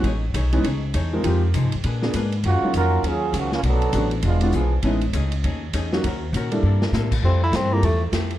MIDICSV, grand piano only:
0, 0, Header, 1, 2, 480
1, 0, Start_track
1, 0, Tempo, 299551
1, 67, Time_signature, 4, 2, 24, 8
1, 13435, End_track
2, 0, Start_track
2, 0, Title_t, "Grand piano"
2, 0, Program_c, 0, 0
2, 839, Note_on_c, 0, 52, 74
2, 849, Note_on_c, 0, 59, 66
2, 852, Note_on_c, 0, 56, 70
2, 852, Note_on_c, 0, 61, 68
2, 863, Note_on_c, 0, 63, 83
2, 1009, Note_off_c, 0, 52, 0
2, 1014, Note_off_c, 0, 59, 0
2, 1015, Note_off_c, 0, 56, 0
2, 1015, Note_off_c, 0, 61, 0
2, 1020, Note_off_c, 0, 63, 0
2, 1812, Note_on_c, 0, 53, 70
2, 1813, Note_on_c, 0, 56, 57
2, 1818, Note_on_c, 0, 60, 61
2, 1825, Note_on_c, 0, 63, 55
2, 1826, Note_on_c, 0, 70, 74
2, 1952, Note_off_c, 0, 53, 0
2, 1955, Note_off_c, 0, 56, 0
2, 1967, Note_off_c, 0, 60, 0
2, 1967, Note_off_c, 0, 63, 0
2, 1976, Note_on_c, 0, 53, 58
2, 1979, Note_on_c, 0, 56, 58
2, 1991, Note_on_c, 0, 60, 57
2, 1991, Note_on_c, 0, 63, 57
2, 2002, Note_on_c, 0, 67, 68
2, 2245, Note_off_c, 0, 53, 0
2, 2247, Note_off_c, 0, 56, 0
2, 2253, Note_off_c, 0, 60, 0
2, 2253, Note_off_c, 0, 63, 0
2, 2258, Note_off_c, 0, 67, 0
2, 2444, Note_off_c, 0, 70, 0
2, 3243, Note_on_c, 0, 53, 60
2, 3252, Note_on_c, 0, 58, 53
2, 3255, Note_on_c, 0, 59, 54
2, 3257, Note_on_c, 0, 62, 56
2, 3259, Note_on_c, 0, 68, 61
2, 3412, Note_off_c, 0, 53, 0
2, 3416, Note_off_c, 0, 58, 0
2, 3418, Note_off_c, 0, 59, 0
2, 3419, Note_off_c, 0, 62, 0
2, 3420, Note_off_c, 0, 68, 0
2, 4228, Note_on_c, 0, 54, 52
2, 4232, Note_on_c, 0, 58, 45
2, 4239, Note_on_c, 0, 61, 46
2, 4239, Note_on_c, 0, 65, 63
2, 4241, Note_on_c, 0, 63, 52
2, 4846, Note_off_c, 0, 54, 0
2, 4848, Note_off_c, 0, 58, 0
2, 4851, Note_off_c, 0, 61, 0
2, 4851, Note_off_c, 0, 65, 0
2, 4852, Note_off_c, 0, 63, 0
2, 6300, Note_on_c, 0, 57, 55
2, 6307, Note_on_c, 0, 59, 49
2, 6309, Note_on_c, 0, 61, 48
2, 6313, Note_on_c, 0, 62, 51
2, 6319, Note_on_c, 0, 66, 58
2, 6568, Note_off_c, 0, 57, 0
2, 6571, Note_off_c, 0, 59, 0
2, 6572, Note_off_c, 0, 61, 0
2, 6574, Note_off_c, 0, 62, 0
2, 6577, Note_off_c, 0, 66, 0
2, 7077, Note_on_c, 0, 56, 65
2, 7078, Note_on_c, 0, 59, 62
2, 7083, Note_on_c, 0, 64, 58
2, 7085, Note_on_c, 0, 62, 67
2, 7098, Note_on_c, 0, 65, 72
2, 7249, Note_off_c, 0, 56, 0
2, 7249, Note_off_c, 0, 59, 0
2, 7251, Note_off_c, 0, 64, 0
2, 7252, Note_off_c, 0, 62, 0
2, 7259, Note_off_c, 0, 65, 0
2, 7752, Note_on_c, 0, 56, 63
2, 7754, Note_on_c, 0, 59, 56
2, 7759, Note_on_c, 0, 61, 53
2, 7761, Note_on_c, 0, 63, 52
2, 7773, Note_on_c, 0, 64, 65
2, 8013, Note_off_c, 0, 56, 0
2, 8014, Note_off_c, 0, 59, 0
2, 8017, Note_off_c, 0, 61, 0
2, 8018, Note_off_c, 0, 63, 0
2, 8024, Note_off_c, 0, 64, 0
2, 9498, Note_on_c, 0, 54, 66
2, 9504, Note_on_c, 0, 58, 57
2, 9505, Note_on_c, 0, 61, 56
2, 9514, Note_on_c, 0, 63, 61
2, 9515, Note_on_c, 0, 66, 72
2, 9658, Note_off_c, 0, 54, 0
2, 9661, Note_off_c, 0, 58, 0
2, 9662, Note_off_c, 0, 61, 0
2, 9666, Note_off_c, 0, 63, 0
2, 9667, Note_off_c, 0, 66, 0
2, 10438, Note_on_c, 0, 55, 68
2, 10448, Note_on_c, 0, 58, 63
2, 10449, Note_on_c, 0, 64, 61
2, 10450, Note_on_c, 0, 62, 58
2, 10451, Note_on_c, 0, 69, 74
2, 11069, Note_off_c, 0, 55, 0
2, 11074, Note_off_c, 0, 58, 0
2, 11074, Note_off_c, 0, 62, 0
2, 11074, Note_off_c, 0, 64, 0
2, 11075, Note_off_c, 0, 69, 0
2, 12359, Note_on_c, 0, 55, 64
2, 12364, Note_on_c, 0, 60, 54
2, 12366, Note_on_c, 0, 64, 56
2, 12373, Note_on_c, 0, 65, 56
2, 12386, Note_on_c, 0, 69, 64
2, 12528, Note_off_c, 0, 55, 0
2, 12530, Note_off_c, 0, 60, 0
2, 12531, Note_off_c, 0, 64, 0
2, 12535, Note_off_c, 0, 65, 0
2, 12541, Note_off_c, 0, 69, 0
2, 13435, End_track
0, 0, End_of_file